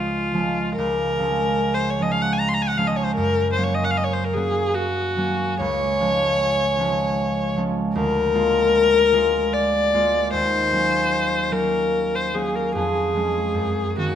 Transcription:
0.00 0.77 C#2 soft
0.00 0.32 F3 soft
0.00 0.33 G#3 soft
0.00 0.34 C#4 soft
0.00 0.75 F4 medium
0.34 1.18 F3 soft
0.34 1.18 G#3 soft
0.34 1.19 C#4 soft
0.76 3.21 C#2 soft
0.76 1.76 A#4 medium
1.19 1.99 F3 soft
1.19 1.99 G#3 soft
1.19 1.99 C#4 soft
1.74 1.91 C5 medium
1.90 2.04 C#5 soft
2.00 2.77 F3 soft
2.00 2.77 G#3 soft
2.00 2.77 C#4 soft
2.00 2.13 D#5 soft
2.12 2.24 F5 soft
2.22 2.34 F#5 medium
2.33 2.41 G#5 soft
2.40 2.50 A#5 soft
2.49 2.55 C6 soft
2.54 2.64 A#5 soft
2.62 2.70 G#5 soft
2.68 2.79 F#5 soft
2.77 3.20 F3 soft
2.77 3.21 G#3 soft
2.77 3.56 C#4 soft
2.77 2.89 F5 medium
2.87 2.98 D#5 soft
2.96 3.06 C#5 soft
3.05 3.15 C5 soft
3.16 5.63 F#2 soft
3.16 3.51 A#4 medium
3.53 4.35 F#3 soft
3.53 3.65 C5 medium
3.57 4.35 A#3 soft
3.57 4.36 C#4 soft
3.64 3.76 C#5 medium
3.75 3.86 D#5 medium
3.84 3.92 F#5 medium
3.91 3.99 F5 medium
3.97 4.05 D#5 medium
4.04 4.15 C#5 medium
4.13 4.26 C5 soft
4.25 4.35 A#4 soft
4.34 5.16 F#3 soft
4.34 5.17 A#3 soft
4.34 5.17 C#4 soft
4.34 4.76 G#4 medium
4.74 5.59 F#4 medium
5.17 5.63 F#3 soft
5.17 5.63 A#3 soft
5.17 6.00 C#4 soft
5.60 7.98 C#2 soft
5.60 7.52 C#5 medium
6.00 6.78 F3 soft
6.00 6.78 G#3 soft
6.00 6.79 C#4 soft
6.79 7.55 F3 soft
6.79 7.56 G#3 soft
6.79 7.56 C#4 soft
7.57 10.36 F3 soft
7.57 8.32 G#3 soft
7.57 7.99 C#4 soft
7.95 10.35 D2 soft
7.95 9.54 A#4 medium
8.34 9.11 G#3 soft
8.34 9.12 A#3 soft
8.34 9.12 F4 soft
9.12 9.93 G#3 soft
9.12 9.93 A#3 soft
9.12 9.93 F4 soft
9.53 10.32 D5 medium
9.94 10.35 G#3 soft
9.94 10.71 A#3 soft
9.94 10.36 F4 soft
10.33 12.78 D#2 soft
10.33 11.54 C5 medium
10.72 11.50 F#3 soft
10.72 11.51 A#3 soft
10.72 11.51 C#4 soft
11.51 12.33 F#3 soft
11.51 12.34 A#3 soft
11.51 12.34 C#4 soft
11.51 12.17 A#4 medium
12.16 12.35 C5 medium
12.34 12.78 F#3 soft
12.34 12.78 A#3 soft
12.34 13.14 C#4 soft
12.34 12.57 G#4 medium
12.55 12.75 A#4 medium
12.75 13.59 F2 soft
12.75 13.95 G#4 medium
13.14 13.59 F3 soft
13.14 13.59 G#3 soft
13.14 13.96 C#4 soft
13.54 14.15 F#2 soft
13.97 14.15 D#3 soft
13.97 14.15 A#3 soft
13.97 14.15 C#4 soft
13.97 14.15 F#4 soft

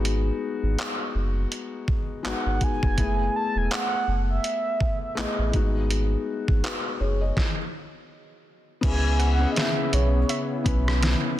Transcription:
0.00 0.31 G#1 loud
0.00 0.86 G#3 loud
0.00 0.86 B3 medium
0.00 0.87 D#4 medium
0.00 0.91 F#4 loud
0.05 closed hi-hat medium
0.63 0.76 G#1 medium
0.79 clap loud
0.79 closed hi-hat medium
1.15 1.46 F#1 loud
1.52 closed hi-hat medium
1.88 kick medium
2.23 2.33 G#1 soft
2.23 2.69 G#3 medium
2.23 2.70 B3 medium
2.23 2.70 D#4 medium
2.23 2.71 F#4 medium
2.23 2.65 F#5 medium
2.23 clap loud
2.23 closed hi-hat medium
2.46 2.59 G#1 medium
2.61 3.35 G#5 loud
2.61 kick medium
2.61 closed hi-hat medium
2.83 2.96 F1 medium
2.83 kick loud
2.96 3.29 F#1 loud
2.96 3.88 A3 medium
2.96 3.88 B3 medium
2.96 3.89 E4 medium
2.96 3.89 G#4 medium
2.96 kick loud
2.96 closed hi-hat medium
3.36 3.59 A5 loud
3.55 3.69 E1 medium
3.55 3.72 G#5 loud
3.71 4.26 F#5 loud
3.71 clap loud
3.71 closed hi-hat medium
4.08 4.39 F#1 loud
4.30 4.99 E5 loud
4.44 closed hi-hat medium
4.80 kick medium
5.03 5.17 E5 medium
5.15 5.26 A1 soft
5.15 5.53 A3 medium
5.15 5.52 B3 medium
5.15 5.54 E4 medium
5.15 5.55 G#4 medium
5.15 5.72 D#5 medium
5.15 clap loud
5.15 closed hi-hat medium
5.39 5.52 A1 medium
5.52 6.16 G#1 loud
5.52 6.71 G#3 medium
5.52 6.72 B3 medium
5.52 6.72 D#4 medium
5.52 kick medium
5.52 closed hi-hat medium
5.56 6.63 F#4 medium
5.91 closed hi-hat medium
6.48 6.61 G#1 medium
6.48 kick medium
6.63 6.99 F#4 medium
6.63 6.98 B4 medium
6.63 clap loud
6.63 closed hi-hat medium
7.00 7.32 F#1 loud
7.00 7.20 G#4 medium
7.00 7.20 C#5 medium
7.21 7.56 G#4 medium
7.21 7.56 D#5 medium
7.37 kick loud
7.37 snare medium
8.81 9.46 C#2 loud
8.81 11.40 C#3 medium
8.81 9.16 B3 medium
8.81 11.40 B3 medium
8.81 9.16 C#4 medium
8.81 11.40 E4 medium
8.81 9.17 E4 medium
8.81 9.29 G#5 loud
8.81 kick loud
8.81 closed hi-hat medium
8.81 crash loud
8.85 9.18 G#4 medium
9.19 10.53 F#5 medium
9.19 closed hi-hat medium
9.33 9.50 F#5 loud
9.39 10.16 B3 medium
9.39 10.17 C#4 medium
9.39 10.18 E4 medium
9.39 10.18 G#4 medium
9.52 9.59 D#5 medium
9.56 9.95 E5 loud
9.56 snare loud
9.56 closed hi-hat medium
9.93 10.24 B1 loud
9.93 10.67 C#5 medium
9.93 closed hi-hat medium
10.29 11.40 E5 medium
10.29 closed hi-hat medium
10.64 11.15 B1 loud
10.64 11.32 B3 medium
10.64 11.33 C#4 medium
10.64 11.34 E4 medium
10.64 11.34 B4 medium
10.64 kick medium
10.64 closed hi-hat medium
10.88 cross-stick loud
11.03 snare loud
11.03 closed hi-hat medium

